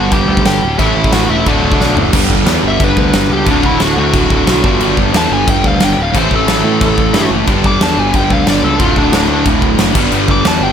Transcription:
Already playing: G2 D3 G3 B3 D4 F#4 G4 F#5
0.11 G1 G2 D3 G3 G4 G5, kick, crash
0.28 D2
0.37 kick
0.45 G1 G2 D3 G3 G4 G5, snare, crash
0.62 D1 G2 D3 G3
0.78 A1 A2 E3 A3 C#4 E4 A4 E5, kick, crash
0.95 A1
1.04 kick
1.12 A1 A2 E3 A3 F#4 F#5, snare, crash
1.28 E1 A2 E3 A3 E4 E5
1.46 D1 D2 A2 D3 A3 D4 F#4 D5, kick, crash
1.62 D1
1.72 kick
1.79 B1 D2 A2 D3, snare
1.97 F#1 D2 A2 D3, floor tom
2.12 G1 G2 D3 G3 B3 D4 G4, kick, crash
2.29 G1, kick
2.46 E2 G2 D3 G3, snare, crash
2.63 G1 G2 D3 G3
2.68 E5
2.80 G1 G2 D3 G3, kick, crash
2.84 B4
2.97 D2, kick
3.13 G1 G2 D3 G3, snare, crash
3.29 C#2 G2 D3 G3
3.33 G4
3.45 D1 D2 A2 D3 A3 F#4, kick, crash
3.51 D4
3.63 D1 E4, kick
3.80 D1 D2 A2 D3 F#4, snare, crash
3.97 D2 A2 D3 F#4
4.13 D1 D2 A2 D3, kick, crash
4.30 D1, kick
4.46 B1 D2 A2 D3, snare, crash
4.62 G1 G2 D3 G3 B3 D4 G4, kick
4.79 G1 G2 D3 G3, crash
4.97 G1, kick
5.13 E2 G2 D3 G3 A5, snare, crash
5.30 G1 G2 D3 G3 G#5
5.47 G1 G2 D3 G3 G5, kick, crash
5.64 D2 F5, kick
5.80 G1 G2 D3 G3, snare, crash
5.84 G5
5.97 D1 G2 D3 G3
6.03 F5
6.12 A1 A2 E3 A3 C#4 E4 A4, kick, crash
6.18 C5
6.31 A1, kick
6.36 A4
6.47 A1 A2 E3 A3, snare, crash
6.64 A2 E3 A3
6.81 A1 A2 E3 A3, kick, crash
6.98 A1, kick
7.13 G2 A2 E3 A3, snare, crash
7.29 F#1 A2 E3 A3
7.46 G1 G2 D3 G3 B3 D4 G4, kick, crash
7.64 G1 D6, kick
7.80 E2 G2 D3 G3 A5, snare, crash
7.97 G1 G2 D3 G3 G#5
8.14 G1 G2 D3 G3 G5, kick, crash
8.30 D2 F5, kick
8.46 G1 G2 D3 G3 D5, snare, crash
8.62 C#2 G2 D3 G3 A4
8.79 D1 D2 A2 D3 A3 F4 F#4, kick, crash
8.96 D1 D4, kick
9.12 D1 D2 A2 D3 D4, snare, crash
9.28 D2 A2 D3
9.45 D1 D2 A2 D3, kick, crash
9.61 D1, kick
9.77 F#1 D2 A2 D3, snare, crash
9.94 G1 G2 D3 G3 B3 D4 G4, kick, crash
10.11 G1 G2 D3 G3, crash
10.28 G1 D6, kick
10.44 E2 G2 D3 G3 A5, snare, crash
10.61 G1 G2 D3 G3 G5

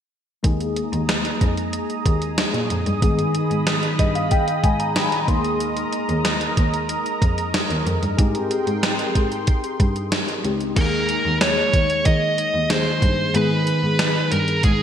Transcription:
0.43 D#2 G#3 A#3 D#4 G#4 D#5 A#5 D#6, kick, closed hi-hat
0.60 closed hi-hat
0.76 closed hi-hat
0.93 D#2, closed hi-hat
1.09 snare, closed hi-hat
1.25 closed hi-hat
1.41 F2, kick, closed hi-hat
1.57 closed hi-hat
1.73 closed hi-hat
1.90 closed hi-hat
2.06 D#2, kick, closed hi-hat
2.22 closed hi-hat
2.38 snare, closed hi-hat
2.54 A#2, closed hi-hat
2.70 F2, closed hi-hat
2.86 G2, closed hi-hat
3.01 G#2 D#3 B3 D#4 G#4 B5, kick, closed hi-hat
3.19 closed hi-hat
3.35 closed hi-hat
3.51 G#2, closed hi-hat
3.67 snare, closed hi-hat
3.83 closed hi-hat
3.99 G2 D#5, kick, closed hi-hat
4.15 F5, closed hi-hat
4.31 G5, kick, closed hi-hat
4.48 closed hi-hat
4.64 G#2 G#5, kick, closed hi-hat
4.80 A#5, closed hi-hat
4.96 B5, snare, closed hi-hat
5.12 closed hi-hat
5.27 D#2 G#3 A#3 D#4 G#4 A#4 A#5 C6, kick, closed hi-hat
5.44 closed hi-hat
5.60 closed hi-hat
5.77 closed hi-hat
5.93 closed hi-hat
6.09 D#2, closed hi-hat
6.25 snare, closed hi-hat
6.41 closed hi-hat
6.57 D#2, kick, closed hi-hat
6.74 closed hi-hat
6.89 closed hi-hat
7.06 closed hi-hat
7.22 F2, kick, closed hi-hat
7.38 closed hi-hat
7.54 snare, closed hi-hat
7.70 D#2, closed hi-hat
7.86 F2, closed hi-hat
8.03 G2, closed hi-hat
8.17 G#2 C4 D#4 G4 G#4 G5 C6, kick, closed hi-hat
8.35 closed hi-hat
8.51 closed hi-hat
8.67 G#2, closed hi-hat
8.83 snare, closed hi-hat
8.99 closed hi-hat
9.15 G#2, kick, closed hi-hat
9.32 closed hi-hat
9.47 kick, closed hi-hat
9.64 closed hi-hat
9.80 G2, kick, closed hi-hat
9.96 closed hi-hat
10.12 snare, closed hi-hat
10.28 closed hi-hat
10.44 C#2 G#3 C4 D#4 G4, closed hi-hat
10.61 closed hi-hat
10.75 D#2 G#3 A#3 D#4 G#4 A#4, kick, closed hi-hat, crash
11.09 closed hi-hat
11.25 D#2
11.41 C#5, snare, closed hi-hat
11.73 D#2, kick, closed hi-hat
11.90 closed hi-hat
12.05 D#3 D#5, kick, closed hi-hat
12.38 closed hi-hat
12.54 D#2
12.69 D#3 A#3 D#4 G#4 C5, snare, closed hi-hat
13.02 G2, kick, closed hi-hat
13.33 G#2 D#3 B3 D#4 G#4 B4, closed hi-hat
13.67 closed hi-hat
13.83 G#2
13.99 snare, closed hi-hat
14.31 G2 A#4, closed hi-hat
14.48 closed hi-hat
14.63 G#2 G#4, kick, closed hi-hat

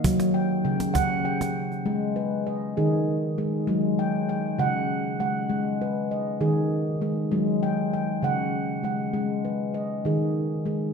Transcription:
Already playing: F5
0.04 F#3, cajon bass
0.20 cajon slap
0.34 G5
0.65 C#3 G5
0.80 cajon slap
0.94 C#3 F#5, cajon bass, cajon slap
1.25 G5
1.41 cajon slap
1.72 cajon slap
1.86 G#3
2.16 B4
2.47 D#5
2.77 D#3 G#4
3.38 G#3 G#4
3.67 F#3 G#3
3.99 G5
4.29 G5
4.58 C#3 F#5
5.20 G#3 F#5
5.50 G#3
5.82 B4
6.11 D#5
6.41 D#3 G#4
7.01 G#3 G#4
7.32 F#3 G#3
7.63 G5
7.93 G5
8.22 C#3 F#5
8.84 G#3 F#5
9.14 G#3
9.45 B4
9.74 D#5
10.05 D#3 G#4
10.65 G#3 G#4

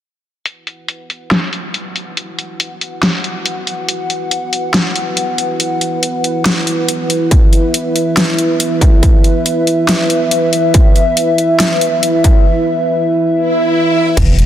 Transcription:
0.45 E4 B4 F#5, closed hi-hat
0.67 closed hi-hat
0.88 closed hi-hat
1.10 closed hi-hat
1.31 snare, closed hi-hat
1.53 closed hi-hat
1.74 closed hi-hat
1.96 closed hi-hat
2.17 closed hi-hat
2.39 closed hi-hat
2.60 closed hi-hat
2.81 closed hi-hat
3.03 snare, closed hi-hat
3.24 closed hi-hat
3.46 closed hi-hat
3.67 closed hi-hat
3.89 closed hi-hat
4.10 closed hi-hat
4.31 closed hi-hat
4.53 closed hi-hat
4.74 snare, closed hi-hat
4.96 closed hi-hat
5.17 closed hi-hat
5.38 closed hi-hat
5.60 closed hi-hat
5.81 closed hi-hat
6.03 closed hi-hat
6.24 closed hi-hat
6.46 snare, closed hi-hat
6.67 closed hi-hat
6.88 closed hi-hat
7.10 closed hi-hat
7.31 E5, kick, closed hi-hat
7.53 closed hi-hat
7.74 closed hi-hat
7.96 closed hi-hat
8.17 snare, closed hi-hat
8.39 closed hi-hat
8.60 closed hi-hat
8.81 kick, closed hi-hat
9.03 kick, closed hi-hat
9.24 closed hi-hat
9.46 closed hi-hat
9.67 closed hi-hat
9.89 snare, closed hi-hat
10.10 closed hi-hat
10.31 closed hi-hat
10.53 closed hi-hat
10.74 kick, closed hi-hat
10.96 closed hi-hat
11.17 closed hi-hat
11.38 closed hi-hat
11.60 snare, closed hi-hat
11.81 closed hi-hat
12.03 closed hi-hat
12.24 kick, closed hi-hat
13.31 swell
14.17 E1 E4 B4 F#5, kick, closed hi-hat, crash
14.39 closed hi-hat

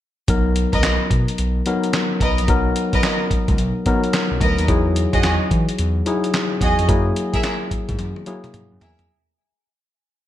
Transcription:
0.28 B1 F#3 B3 D#4 A#4, kick, closed hi-hat
0.56 closed hi-hat
0.73 C#2 A#4 B4 D#5, kick, closed hi-hat
0.83 B1, snare, clap, closed hi-hat
1.11 B2, kick, closed hi-hat
1.28 closed hi-hat
1.38 B1, closed hi-hat
1.66 F#3 B3 D#4 A#4, closed hi-hat
1.84 closed hi-hat
1.93 snare, clap, closed hi-hat
2.20 B1 A#4 B4 D#5, kick, closed hi-hat
2.38 A#1, closed hi-hat
2.48 B1 F#3 B3 D#4 A#4, kick, closed hi-hat
2.76 closed hi-hat
2.93 C#2 A#4 B4 D#5, kick, closed hi-hat
3.03 snare, clap, closed hi-hat
3.31 C#2, kick, closed hi-hat
3.48 C#2, kick, closed hi-hat
3.58 B1, closed hi-hat
3.86 B2 F#3 B3 D#4 A#4, kick, closed hi-hat
4.04 closed hi-hat
4.13 snare, clap, closed hi-hat
4.31 B1
4.40 D2 A#4 B4 D#5, kick, closed hi-hat
4.58 D#2, closed hi-hat
4.68 E2 F#3 D#4 E4 G#4, kick, closed hi-hat
4.96 closed hi-hat
5.13 F#2 F#4 G#4 D#5, kick, closed hi-hat
5.23 E2, snare, clap, closed hi-hat
5.51 E3, kick, closed hi-hat
5.69 closed hi-hat
5.79 E2, closed hi-hat
6.06 F#3 D#4 E4 G#4, closed hi-hat
6.24 closed hi-hat
6.34 snare, clap, closed hi-hat
6.61 E2 F#4 G#4 D#5, kick, closed hi-hat
6.79 F2, closed hi-hat
6.89 F#2 F#3 A#3 E4 G#4, kick, closed hi-hat
7.16 closed hi-hat
7.33 G#2 G#4 A#4 E5, kick, closed hi-hat
7.43 snare, clap, closed hi-hat
7.71 G#2, kick, closed hi-hat
7.89 G#2, kick, closed hi-hat
7.99 F#2, closed hi-hat, high tom
8.16 high tom
8.26 F#3 A#3 E4 G#4, closed hi-hat
8.44 closed hi-hat, mid tom
8.54 closed hi-hat, mid tom
8.72 F#2
8.81 E2 G#4 A#4 E5, closed hi-hat, floor tom
8.99 F2, closed hi-hat, floor tom

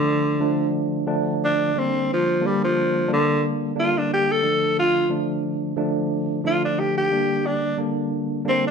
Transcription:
Already playing: D3 F3 A3 D4
0.40 D3 F3 A3 D4
1.07 D3 F3 A3 D4
1.45 D4
1.74 D3 G3 A#3 D4
1.79 C4
2.13 F3
2.41 D3 G3 A#3 D4
2.47 G3
2.64 F3
3.08 D3 G3 A#3 D4
3.13 D3
3.75 D3 G3 A#3 D4
3.79 F4
3.98 D4
4.13 G4
4.31 A4
4.42 D3 F3 A3 D4
4.79 F4
5.09 D3 F3 A3 D4
5.76 D3 F3 A3 D4
6.44 D3 F3 A3 D4 F4
6.65 D4
6.79 G4
6.98 G4
7.11 D3 G3 A#3 D4
7.46 D4
7.78 D3 G3 A#3 D4
8.45 D3 G3 A#3 D4
8.49 C4
8.67 D4

